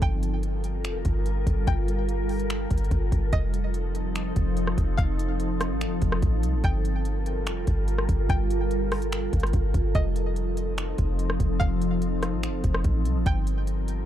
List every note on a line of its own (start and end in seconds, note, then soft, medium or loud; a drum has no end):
0.00 0.86 G1 loud
0.00 3.30 G3 medium
0.00 3.30 F4 medium
0.00 3.29 A4 medium
0.00 3.30 A#4 medium
0.00 0.81 G5 loud
0.00 kick loud
0.00 closed hi-hat medium
0.23 closed hi-hat medium
0.43 closed hi-hat medium
0.64 closed hi-hat medium
0.84 1.04 F1 loud
0.84 finger snap loud
0.84 closed hi-hat medium
1.05 1.45 G1 loud
1.05 kick medium
1.05 closed hi-hat medium
1.26 closed hi-hat medium
1.47 1.67 G1 loud
1.47 kick medium
1.47 closed hi-hat medium
1.67 2.67 G1 loud
1.67 2.46 G5 loud
1.67 kick loud
1.67 closed hi-hat medium
1.88 closed hi-hat medium
2.09 closed hi-hat medium
2.29 closed hi-hat medium
2.29 open hi-hat medium
2.40 closed hi-hat medium
2.50 finger snap loud
2.50 closed hi-hat medium
2.71 2.91 G1 loud
2.71 kick medium
2.71 closed hi-hat medium
2.78 closed hi-hat medium
2.84 closed hi-hat soft
2.91 3.11 G1 loud
2.91 kick medium
2.91 closed hi-hat medium
3.12 3.32 G1 loud
3.12 kick medium
3.12 closed hi-hat medium
3.33 4.32 F1 loud
3.33 6.61 F3 medium
3.33 6.61 C4 medium
3.33 6.61 D#4 medium
3.33 13.22 A4 medium
3.33 4.12 D#5 loud
3.33 kick loud
3.33 closed hi-hat medium
3.54 closed hi-hat medium
3.74 closed hi-hat medium
3.95 closed hi-hat medium
4.15 finger snap loud
4.15 closed hi-hat medium
4.36 4.76 F1 loud
4.36 kick medium
4.36 closed hi-hat medium
4.57 closed hi-hat medium
4.67 cross-stick medium
4.78 4.98 F1 loud
4.78 kick medium
4.78 closed hi-hat medium
4.97 5.72 F1 loud
4.97 5.77 F5 loud
4.97 kick loud
4.97 closed hi-hat medium
5.19 closed hi-hat medium
5.40 closed hi-hat medium
5.61 cross-stick loud
5.61 closed hi-hat medium
5.71 5.88 A1 loud
5.81 finger snap loud
5.81 closed hi-hat medium
5.86 6.01 F1 loud
6.02 6.22 F1 loud
6.02 kick medium
6.02 closed hi-hat medium
6.12 cross-stick loud
6.22 6.45 A1 loud
6.22 kick loud
6.22 closed hi-hat medium
6.43 6.55 C2 loud
6.43 closed hi-hat medium
6.54 6.63 A1 loud
6.64 7.48 G1 loud
6.64 9.92 G3 medium
6.64 9.92 F4 medium
6.64 9.92 A#4 medium
6.64 7.43 G5 loud
6.64 kick loud
6.64 closed hi-hat medium
6.85 closed hi-hat medium
7.05 closed hi-hat medium
7.26 closed hi-hat medium
7.47 7.66 F1 loud
7.47 finger snap loud
7.47 closed hi-hat medium
7.67 8.07 G1 loud
7.67 kick medium
7.67 closed hi-hat medium
7.88 closed hi-hat medium
7.98 cross-stick medium
8.09 8.29 G1 loud
8.09 kick medium
8.09 closed hi-hat medium
8.29 9.29 G1 loud
8.29 9.08 G5 loud
8.29 kick loud
8.29 closed hi-hat medium
8.50 closed hi-hat medium
8.71 closed hi-hat medium
8.92 cross-stick loud
8.92 closed hi-hat medium
8.92 open hi-hat medium
9.02 closed hi-hat medium
9.12 finger snap loud
9.12 closed hi-hat medium
9.33 9.53 G1 loud
9.33 kick medium
9.33 closed hi-hat medium
9.40 cross-stick loud
9.40 closed hi-hat medium
9.47 closed hi-hat soft
9.53 9.73 G1 loud
9.53 kick medium
9.53 closed hi-hat medium
9.74 9.94 G1 loud
9.74 kick medium
9.74 closed hi-hat medium
9.95 10.94 F1 loud
9.95 13.23 F3 medium
9.95 13.23 C4 medium
9.95 13.23 D#4 medium
9.95 10.74 D#5 loud
9.95 kick loud
9.95 closed hi-hat medium
10.16 closed hi-hat medium
10.36 closed hi-hat medium
10.57 closed hi-hat medium
10.78 finger snap loud
10.78 closed hi-hat medium
10.98 11.38 F1 loud
10.98 kick medium
10.98 closed hi-hat medium
11.19 closed hi-hat medium
11.30 cross-stick medium
11.40 11.60 F1 loud
11.40 kick medium
11.40 closed hi-hat medium
11.60 12.34 F1 loud
11.60 12.39 F5 loud
11.60 kick loud
11.60 closed hi-hat medium
11.82 closed hi-hat medium
12.02 closed hi-hat medium
12.23 cross-stick medium
12.23 closed hi-hat medium
12.33 12.50 A1 loud
12.43 finger snap loud
12.43 closed hi-hat medium
12.48 12.63 F1 loud
12.64 12.84 F1 loud
12.64 kick medium
12.64 closed hi-hat medium
12.74 cross-stick loud
12.84 13.07 A1 loud
12.84 kick loud
12.84 closed hi-hat medium
13.05 13.17 C2 loud
13.05 closed hi-hat medium
13.16 13.26 A1 loud
13.26 14.05 G1 loud
13.26 14.05 G3 medium
13.26 14.05 F4 medium
13.26 14.05 A4 medium
13.26 14.05 A#4 medium
13.26 14.05 G5 loud
13.26 kick loud
13.26 closed hi-hat medium
13.47 closed hi-hat medium
13.67 closed hi-hat medium
13.88 closed hi-hat medium